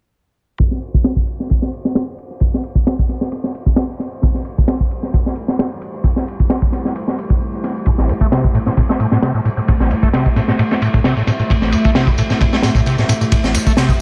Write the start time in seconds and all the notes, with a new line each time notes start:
0.58 A3 E4 G4 C5, kick, ride, tambourine
0.71 snare
0.82 ride
0.94 kick, tambourine
1.04 snare, ride, tambourine
1.16 kick
1.27 ride, tambourine
1.40 snare
1.50 kick, ride, tambourine
1.62 snare
1.73 ride, tambourine
1.85 snare, tambourine
1.95 snare, ride, tambourine
2.18 ride, tambourine
2.40 kick, ride, tambourine
2.54 snare
2.63 ride, tambourine
2.75 kick, tambourine
2.86 snare, ride, tambourine
2.99 kick
3.09 snare, ride, tambourine
3.21 snare, tambourine
3.32 ride, tambourine
3.44 snare
3.55 ride, tambourine
3.66 kick, tambourine
3.76 snare, ride, tambourine
4.00 snare, ride, tambourine
4.12 tambourine
4.23 kick, ride, tambourine
4.34 snare, tambourine
4.45 ride, tambourine
4.58 kick, tambourine
4.68 snare, ride, tambourine
4.80 kick, tambourine
4.91 ride, tambourine
5.03 snare, tambourine
5.14 kick, ride, tambourine
5.26 snare, tambourine
5.35 ride, tambourine
5.48 snare, tambourine
5.59 snare, ride, tambourine
5.71 tambourine
5.81 ride, tambourine
5.94 tambourine
6.04 kick, ride, tambourine
6.16 snare, tambourine
6.27 ride, tambourine
6.39 kick, tambourine
6.50 snare, ride, tambourine
6.62 kick, tambourine
6.72 snare, ride, tambourine
6.85 snare, tambourine
6.95 ride, tambourine
7.08 snare, tambourine
7.18 ride, tambourine
7.30 kick, tambourine
7.41 tambourine
7.53 tambourine
7.64 snare, ride, tambourine
7.76 tambourine
7.86 A2 E5, kick, ride, tambourine
7.98 A1, snare, tambourine
8.09 A2, ride, tambourine
8.21 A3, kick, tambourine
8.32 C3, snare, ride, tambourine
8.44 B2, kick, tambourine
8.54 A2, ride, tambourine
8.66 A2, snare, tambourine
8.77 A2, kick, ride, tambourine
8.89 A3, snare, tambourine
9.00 A2, ride, tambourine
9.12 A2, snare, tambourine
9.22 C3, snare, ride, tambourine
9.34 A2, tambourine
9.45 A2, ride, tambourine
9.57 A2, tambourine
9.68 A2, kick, ride, tambourine
9.80 A1, snare, tambourine
9.91 A2, ride, tambourine
10.03 A3, kick, tambourine
10.13 C3, snare, ride, tambourine
10.26 B2, kick, tambourine
10.36 A2, snare, ride, tambourine
10.48 A2, snare, tambourine
10.59 A2, ride, tambourine
10.71 A3, snare, tambourine
10.82 A2, ride, tambourine
10.94 A2, kick, tambourine
11.04 C3, snare, ride, tambourine
11.16 A2, tambourine
11.27 A2, snare, ride, tambourine
11.39 A2, tambourine
11.50 A2, kick, ride, tambourine
11.62 A1, snare, tambourine
11.72 A2, ride, tambourine
11.84 A3, kick, tambourine
11.95 C3, snare, ride, tambourine
12.07 B2, kick, tambourine
12.18 A2, ride, tambourine
12.30 A2, snare, tambourine
12.41 A2, kick, ride, tambourine
12.53 A3, snare, tambourine
12.63 A2, snare, ride, tambourine
12.75 A2, kick, tambourine
12.86 C3, ride, tambourine
12.98 A2, snare, tambourine
13.09 A2, ride, tambourine
13.21 A2, tambourine
13.32 A2, kick, ride, tambourine
13.44 A1, snare, tambourine
13.54 A2, ride, tambourine
13.67 A3, kick, tambourine
13.77 C3, snare, ride, tambourine
13.89 B2, kick, tambourine